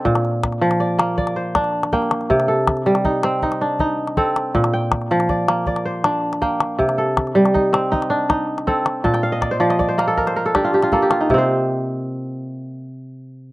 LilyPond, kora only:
<<
  \new Staff \with { instrumentName = "Kora" } { \time 12/8 \key bes \major \tempo 4. = 107 << { r1. | r1. | r1. | r1. |
a''16 g''16 f''16 ees''16 d''16 c''16 d''16 ees''16 d''16 c''16 bes'16 a'16 bes'16 c''16 bes'16 a'16 g'16 f'16 g'16 f'16 a'16 g'16 f'16 ees'16~ | ees'16 r1 r4. r16 | } \\ { a'8 r4. d''4 d''8 c''4. g''4~ | g''8 a'4. ees'4 ees'8 d'4. a'4~ | a'8 g''4. d''4 d''8 c''4. g''4~ | g''8 a'4. ees'4 ees'8 d'4. a'4~ |
a'8 r1 r4. | <c c' c''>1. | } >> }
  \new Staff \with { instrumentName = "Kora" } { \time 12/8 \key bes \major bes,4 r8 f4 bes4 r8 d'4 bes4 | c4 r8 g4 c'4 r8 ees'4 c'4 | bes,4 r8 f4 bes4 r8 d'4 bes4 | c4 r8 g4 c'4 r8 ees'4 c'4 |
bes,4 r8 f4 bes4 r8 d'4 bes4 | r1. | }
>>